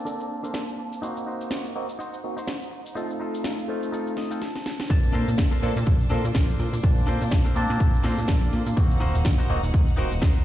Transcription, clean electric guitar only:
0.05 D4 A4 A#4 D5
0.43 D4 A4 A#4 C5
0.78 muted clean electric guitar stroke
1.02 D#4 F#4 C5
1.26 D#4 F#4 C5
1.99 D#4 F#4 C5
2.37 D#4 F#4 C5
2.71 muted clean electric guitar stroke
2.95 D#4 F4 A4
3.20 D#4 F4 A4
3.92 D#4 F4 A4
4.18 D#5
4.30 D#4 F4 A4 G5
4.42 A5
5.13 D4 A4 A#4 C5
5.38 muted clean electric guitar stroke
5.51 D4 A4 A#4 C5
5.86 muted clean electric guitar stroke
6.10 D4 A4 A#4 C5
6.34 D4 A4 A#4 C5
7.07 D4 A4 A#4 C5
7.31 muted clean electric guitar stroke
7.45 D4 A4 A#4 C5
7.79 muted clean electric guitar stroke
8.04 D4 A4 A#4 C5
8.28 D4 A4 A#4 D5
9.00 D#4 F#4 A#4 C5
9.25 muted clean electric guitar stroke
9.38 D#4 F#4 A#4 C5
9.73 muted clean electric guitar stroke
9.97 D#4 F#4 A#4 C5
10.21 D#4 F#4 A#4 C5

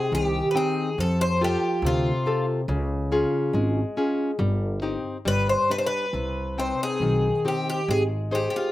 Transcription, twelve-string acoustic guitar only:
Already playing: G#4
0.15 G4
0.51 B4
0.57 G#4
1.00 A4
1.21 C5
1.44 G4
1.86 F4
5.28 B4
5.49 C5
5.71 B4
5.78 C5
5.87 B4
6.59 C5
6.83 G#4
7.48 G4
7.70 G4
7.91 G#4
8.35 G4
8.50 G4
8.56 F4

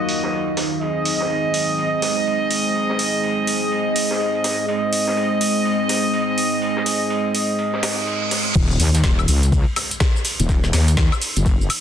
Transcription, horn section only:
Already playing: A#3 D#4 F4 F#4 D#5
0.81 C4 D#4 G#4 D#5
4.68 C4 D#4 G#4 D#5

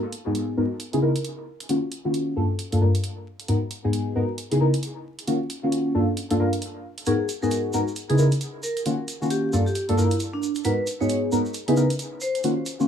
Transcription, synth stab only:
0.26 G#2 B3 D#4 F#4 G#4
0.57 G#2 B3 D#4 F#4 A#4
0.93 C#3 B3 D#4 E4 G#4
1.02 C#3 B3 D#4 E4 A#4
1.69 D#3 A#3 C#4 F4 F#4
2.05 D#3 A#3 C#4 F4 F#4
2.36 G2 A#3 D4 F4 A4
2.72 G2 A#3 D4 F4 A4
2.81 G2 A#3 D4 F4 A#4
3.48 G#2 B3 D#4 F#4 A#4
3.84 G#2 B3 D#4 F#4 G#4
4.16 G#2 B3 D#4 F#4 A#4
4.51 C#3 B3 D#4 E4 G#4
4.60 C#3 B3 D#4 E4 A#4
5.27 D#3 A#3 C#4 F4 F#4
5.63 D#3 A#3 C#4 F4 F#4
5.95 G2 A#3 D4 F4 A4
6.30 G2 A#3 D4 F4 A4
6.39 G2 A#3 D4 F4 A#4
7.07 G#2 B3 D#4 F#4 A#4
7.42 G#2 B3 D#4 F#4 G#4
7.74 G#2 B3 D#4 F#4 A#4
8.10 C#3 B3 D#4 E4 G#4
8.19 C#3 B3 D#4 E4 A#4
8.86 D#3 A#3 C#4 F4 F#4
9.22 D#3 A#3 C#4 F4 F#4
9.53 G2 A#3 D4 F4 A4
9.89 G2 A#3 D4 F4 A4
9.98 G2 A#3 D4 F4 A#4
10.65 G#2 B3 D#4 F#4 A#4
11.01 G#2 B3 D#4 F#4 G#4
11.32 G#2 B3 D#4 F#4 A#4
11.68 C#3 B3 D#4 E4 G#4
11.77 C#3 B3 D#4 E4 A#4
12.44 D#3 A#3 C#4 F4 F#4
12.80 D#3 A#3 C#4 F4 F#4

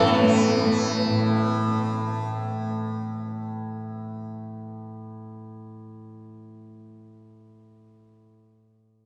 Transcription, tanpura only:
Already playing: A2 E3 A3
0.22 A3
0.65 A3
1.09 A2

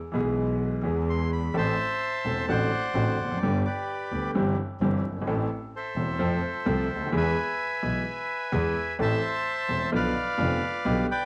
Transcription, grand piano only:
0.12 B1 B2 E3 G#3 B3 G#4
0.81 E2 E3 G#3 B3 G#4
1.54 A1 A2 E3 A3 C4 A4
2.25 E1 E2 E3 A3 C4 A4
2.48 A1 A2 D3 A3 C4 F#4
2.95 A1 A2 D3 A3 C4 F#4
3.25 E2
3.31 F2
3.37 F#2
3.43 G1 G2 D3 G3 B3 G4
4.12 D2 D3 G3 B3 G4
4.35 G1 G2 E3 G3 C4 G4
4.81 G1 G2 E3 G3 C4 G4
5.10 F#1
5.16 G1
5.22 G#1
5.27 A1 A2 E3 A3 C4 A4
5.96 E1 E2 E3 A3 C4 A4
6.19 F2 F3 A3 C4 A4
6.66 C2 C3 F3 A3 C4 A4
6.95 C#2
7.01 D2
7.07 D#2
7.12 E2 E3 G#3 B3 G#4
7.82 B1 B2 E3 G#3 B3 G#4
8.52 E2 E3 G#3 B3 G#4
8.99 A1 A2 E3 A3 C4 A4
9.69 E1 E2 E3 A3 C4 A4
9.92 B1 B2 D3 F3 B3 F4
10.38 F1 F2 D3 F3 B3 F4
10.85 B1 B2 D3 G3 B3 G4

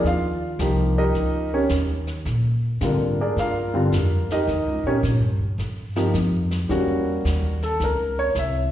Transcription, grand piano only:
0.07 F4 F5
0.60 F3 A#3 D#4 G4
0.98 D#4 G4 A#4 D#5
1.54 C#4 G4 A#4 C#5
2.81 D3 G3 C4 D4 F4 A#4
2.85 A#3
3.21 D4 G#4 A#4 D5
3.39 F4 A#4 D5 F5
3.74 D3 G3 C4 F4
4.32 D#4 G4 A#4 D#5
4.87 C#4 G4 A#4 C#5
5.96 F3 A#3 D#4 G4
6.69 G3 A#3 C#4 F#4
7.63 A4
7.84 A#4
8.19 C#5
8.39 E5

